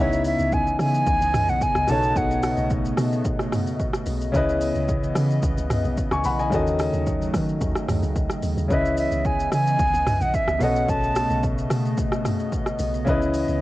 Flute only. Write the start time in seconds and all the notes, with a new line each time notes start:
0.00 E5
0.26 E5
0.53 G#5
0.81 G#5
1.49 F#5
1.63 G#5
1.90 A5
2.17 F#5
8.72 E5
8.99 E5
9.26 G#5
9.53 G#5
10.22 F#5
10.35 E5
10.62 F#5
10.90 A5